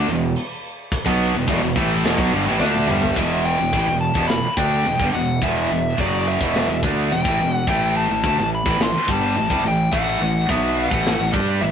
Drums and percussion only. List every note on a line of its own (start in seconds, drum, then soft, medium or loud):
0.36 crash medium
0.92 kick loud
0.92 crash medium
1.06 kick medium
1.48 kick loud
1.48 crash medium
1.76 kick loud
2.04 snare loud
2.04 crash medium
2.18 kick loud
2.61 snare medium
2.74 high tom medium
2.88 mid tom loud
3.02 floor tom medium
3.16 kick loud
3.16 crash loud
3.16 china medium
3.73 kick loud
3.73 china medium
4.15 kick medium
4.29 snare loud
4.29 china medium
4.57 kick loud
4.85 china medium
5.00 kick loud
5.42 kick medium
5.42 china medium
5.98 kick loud
5.98 china medium
6.41 kick loud
6.55 snare loud
6.55 china medium
6.83 kick loud
7.11 china medium
7.25 kick medium
7.67 kick loud
7.67 china soft
8.23 kick loud
8.23 china soft
8.66 kick loud
8.80 snare loud
8.80 china medium
9.08 kick loud
9.36 china medium
9.50 kick medium
9.93 kick loud
9.93 china medium
10.49 kick loud
10.49 china medium
10.91 kick loud
11.06 snare loud
11.06 china medium
11.34 kick loud
11.62 china medium